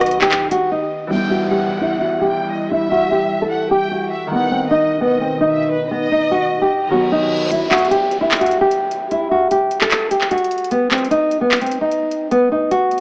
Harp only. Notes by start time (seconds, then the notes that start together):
Already playing: D#3 B3 D#4
1.07 E3 G3
1.13 B3 E4
4.27 D#3
4.33 B3 D#4
6.89 D#3 F#3 B3
6.94 F#4